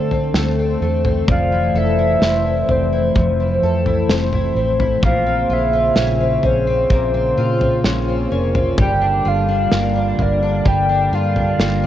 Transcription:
Already playing: D3 A3 C4 A4 C5
0.11 C4, floor tom
0.34 D2 A3, snare
0.59 C4
0.81 E2 A3
1.05 C4, floor tom
1.28 F1 F2 E3 D5 F5, kick, floor tom
1.52 E4
1.74 F1 A4 E5
1.99 E4
2.22 F1 C4, snare
2.45 E4
2.69 F1 C4 C5, floor tom
2.92 E4
3.15 F1 F2 C5, kick, floor tom
3.40 E4
3.62 F2 A4
3.86 E4, floor tom
4.08 F1 C4, snare
4.33 E4, floor tom
4.55 A1 C4
4.80 E4, floor tom
5.03 A#1 A#2 C#3 A#3 C5 F5, kick, floor tom
5.26 C4
5.49 A#1 F4 E5
5.73 C4
5.96 A#1 C#4, snare
6.21 C4
6.43 A#1 C#4 C5, floor tom
6.67 C4
6.90 A#1 A#2 F4 C5, kick, floor tom
7.14 C4
7.38 A#2 F4
7.61 C4, floor tom
7.84 A#1 C#4, snare
8.09 C4
8.31 F1 C#4 A#4
8.55 C4, floor tom
8.78 G1 D3 G3 G5, kick, floor tom
9.02 D4
9.25 G1 F4 F5
9.48 D4
9.71 G1 A#3, snare
9.95 D4
10.18 G1 A#3 D5, floor tom
10.43 D4
10.65 G1 G3 G5, kick, floor tom
10.89 D4
11.12 G2 F4 F5
11.36 D4, floor tom
11.58 G1 A#3, snare
11.83 D4

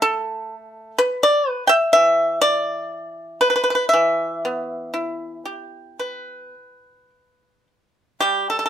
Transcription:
Already playing: A3
0.02 A4
0.98 B4
1.23 D5
1.50 B4
1.67 E5 G5
1.93 E3 E5
2.41 D5
3.41 B4
3.50 B4
3.56 B4
3.64 B4
3.70 B4
3.75 B4
3.89 E5
3.93 E3
4.45 B3
4.94 E4
5.45 G4
5.99 B4
8.20 G3 G4
8.50 A4
8.59 A4
8.66 A4

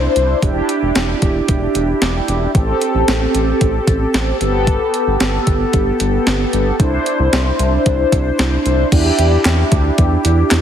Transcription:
Already playing: D4 E4 C5
0.16 C2, closed hi-hat
0.43 E1 D4 E4 G4, kick, closed hi-hat
0.69 closed hi-hat
0.82 E1
0.95 E1, snare, closed hi-hat
1.22 E1, kick, closed hi-hat
1.48 E1, kick, closed hi-hat
1.75 E1, closed hi-hat
2.02 E1, snare, closed hi-hat
2.28 E1, closed hi-hat
2.55 A1 C4 G4 A4, kick, closed hi-hat
2.82 closed hi-hat
2.95 A1
3.08 A1, snare, closed hi-hat
3.35 A1, closed hi-hat
3.61 A1, kick, closed hi-hat
3.87 A1, kick, closed hi-hat
4.14 A1, snare, closed hi-hat
4.41 G1 B3 G4 A4, closed hi-hat
4.67 kick, closed hi-hat
4.94 closed hi-hat
5.07 G1
5.20 G1, snare, closed hi-hat
5.47 G1, kick, closed hi-hat
5.73 G1, kick, closed hi-hat
6.00 G1, closed hi-hat
6.27 G1, snare, closed hi-hat
6.53 G1, closed hi-hat
6.80 C2 D4 E4 C5, kick, closed hi-hat
7.06 closed hi-hat
7.20 C2
7.33 C2, snare, closed hi-hat
7.59 C2, closed hi-hat
7.86 C2, kick, closed hi-hat
8.12 C2, kick, closed hi-hat
8.39 C2, snare, closed hi-hat
8.66 C2, closed hi-hat
8.92 E2 D4 E4 G4, kick, closed hi-hat, crash
9.19 E2, closed hi-hat
9.45 E2, snare, clap, closed hi-hat
9.72 D2, kick, closed hi-hat
9.98 E2, kick, closed hi-hat
10.25 E2, closed hi-hat
10.51 E2, snare, clap, closed hi-hat

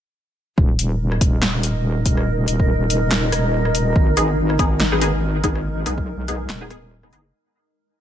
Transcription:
0.58 D#1 D#4 A#4 D#5, kick
0.79 closed hi-hat
1.12 cross-stick
1.21 D#1, kick, closed hi-hat
1.42 snare, clap
1.63 closed hi-hat
2.06 kick, closed hi-hat
2.17 cross-stick
2.48 D#1, closed hi-hat
2.60 kick
2.90 closed hi-hat
3.11 snare, clap
3.32 D#1, cross-stick, closed hi-hat
3.65 cross-stick
3.75 closed hi-hat
3.96 G#1 G#3 A#4, kick
4.17 B3 D#4 G#4, closed hi-hat
4.50 cross-stick
4.59 G#1 B3 D#4 G#4, kick, closed hi-hat
4.80 snare, clap
4.92 B3 D#4 G#4
5.01 B3 D#4 G#4, closed hi-hat
5.44 B3 D#4 G#4, kick, closed hi-hat
5.55 cross-stick
5.86 B1 B3 D#4 G#4, closed hi-hat
5.98 kick
6.28 B3 D#4 G#4, closed hi-hat
6.49 D#1, snare, clap
6.61 B3 D#4 G#4
6.70 B3 D#4 G#4, cross-stick, closed hi-hat
7.03 B3 D#4 G#4, cross-stick
7.13 F#1 B3 D#4 G#4, closed hi-hat

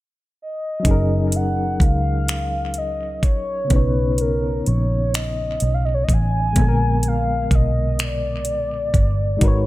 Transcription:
0.42 D#5
0.80 F#3 C#4
0.85 F#1 D#4 G#4, kick, closed hi-hat
0.91 A#4
1.32 F#5, closed hi-hat
1.80 C#2 F5, kick, closed hi-hat
2.28 finger snap, closed hi-hat
2.74 closed hi-hat
2.78 D#5
3.23 A#1 C#5, kick, closed hi-hat
3.65 C#3 B3
3.70 B1 C#4 D#4 B4, kick, closed hi-hat
3.76 C#5
4.18 A#4, closed hi-hat
4.66 A#1 C#5, closed hi-hat
5.14 D#5, finger snap, closed hi-hat
5.60 B1, closed hi-hat
5.74 F5
5.85 D#5
5.94 C#5
6.04 D#5
6.09 A1, kick, closed hi-hat
6.13 G#5
6.51 A#2 G#3
6.56 A#1 D3 B3, kick, closed hi-hat
6.62 A4
6.69 A#4
7.03 closed hi-hat
7.08 F5
7.51 B1 D#5, kick, closed hi-hat
7.99 finger snap, closed hi-hat
8.03 D5
8.45 closed hi-hat
8.94 G1, kick, closed hi-hat
9.37 G#3 D#4 F#4
9.41 G#1 A#4, kick, closed hi-hat
9.45 B4 C#5

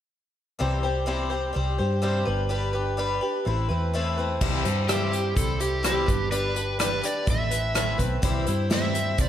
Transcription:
0.59 C2 C3 E3 G3 C4 G4 C5
0.83 G3 C4 G4 C5
1.06 C3 E3 G3 C4 G4 C5
1.30 G3 C4 G4 C5
1.53 C2 G3 C4 G4 C5
1.78 G2 G3 C4 G4 C5
2.02 C3 E3 G3 C4 G4 C5
2.25 G1 D4 G4 B4
2.49 G3 D4 G4 B4
2.73 D4 G4 B4
2.97 G3 D4 G4 B4
3.21 D4 G4 B4
3.45 A1 A3 C4 E4 B4
3.69 E2 A3 C4 E4 B4
3.94 A2 E3 A3 C4 E4 B4
4.18 A3 C4 E4 B4
4.41 C2 C3 E3 G3 C4 E4 C5, kick, crash
4.64 G2 G3 C4 E4 C5, closed hi-hat
4.88 C3 E3 G3 C4 E4 G4 C5, cross-stick, closed hi-hat
5.12 G3 C4 E4 C5, closed hi-hat
5.35 C2 G3 C4 E4 A4 C5, kick, closed hi-hat
5.60 G3 C4 E4 G4 C5, closed hi-hat
5.83 C3 E3 G3 C4 E4 G4 C5, cross-stick, closed hi-hat
6.06 G1 D4 G4 B4, kick, closed hi-hat
6.31 G3 D4 G4 B4, closed hi-hat
6.55 D4 G4 B4, closed hi-hat
6.79 G3 D4 G4 B4, cross-stick, closed hi-hat
7.02 D4 G4 B4 D5, closed hi-hat
7.26 A1 A3 C4 E4 B4, kick, closed hi-hat
7.30 E5
7.51 A3 C4 E4 B4, closed hi-hat
7.75 A2 E3 A3 C4 E4 B4, cross-stick, closed hi-hat
7.98 B1 A3 C4 E4 B4, kick, closed hi-hat
8.22 C2 C3 E3 G3 C4 E4 C5, kick, closed hi-hat
8.46 G2 G3 C4 E4 C5, closed hi-hat
8.70 C3 E3 G3 C4 E4 C5 E5, snare, closed hi-hat
8.94 G3 C4 E4 C5, closed hi-hat
9.18 C2 G3 C4 E4 C5 D5, kick, closed hi-hat

